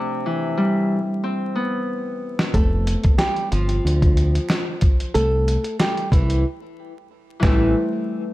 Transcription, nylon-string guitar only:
2.54 A3 A4
3.18 G3 G4
3.51 F3 F4
5.14 A3 A4
5.81 G3 G4
6.12 E3 E4
7.43 E3

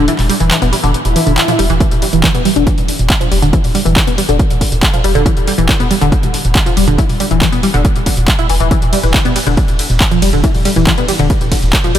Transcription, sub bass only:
0.19 E1
0.40 E1
0.62 E1
0.83 E1
1.05 E1
1.27 E1
1.59 E1
1.70 E1
1.91 E1
2.13 E1
2.34 E1
2.56 E1
2.78 E1
2.99 E1
3.32 E1
3.42 E1
3.64 E1
3.85 E1
4.07 E1
4.29 E1
4.50 E1
4.72 E1
5.04 E1
5.15 E1
5.36 E1
5.58 E1
5.80 E1
6.01 E1
6.23 E1
6.44 E1
6.77 E1
6.88 E1
7.09 E1
7.31 E1
7.53 E1
7.74 E1
7.96 E1
8.17 E1
8.49 E1
8.60 E1
8.82 E1
9.03 E1
9.25 E1
9.47 E1
9.68 E1
9.90 E1
10.22 E1
10.33 E1
10.54 E1
10.76 E1
10.98 E1
11.19 E1
11.41 E1
11.62 E1
11.95 E1

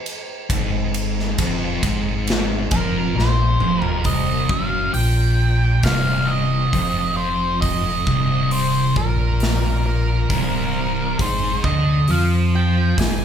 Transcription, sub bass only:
0.50 G#1
1.39 F1
1.83 G#1
2.72 F1
3.15 A#1
3.61 F1
4.05 C1
4.49 F#1
4.94 A#1
5.84 C1
6.73 F1
8.07 C1
8.96 A#1
10.30 C1
11.19 G#1
11.64 D2
12.09 F2
12.98 G#1

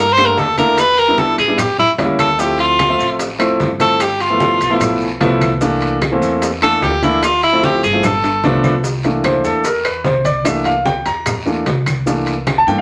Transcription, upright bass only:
Already playing: G2
0.37 E2
1.38 A1
1.98 D2
2.99 A1
3.60 G1
4.61 B1
5.21 C2
6.22 E2
6.82 D2
7.83 G1
8.43 C2
9.44 E2
10.05 C2
11.06 E2
11.66 C2
12.67 G2

